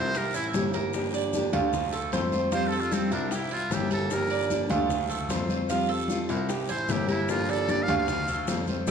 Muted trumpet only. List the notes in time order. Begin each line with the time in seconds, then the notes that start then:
Already playing: C5
0.18 A#4
0.36 E4
2.55 C5
2.67 A4
2.80 F4
2.93 C4
3.13 D4
3.33 E4
3.53 F4
3.74 G4
3.92 A4
4.13 A#4
6.70 C5
6.92 G4
7.10 E4
7.31 F4
7.50 A4
7.70 D5
7.83 F5
7.97 F5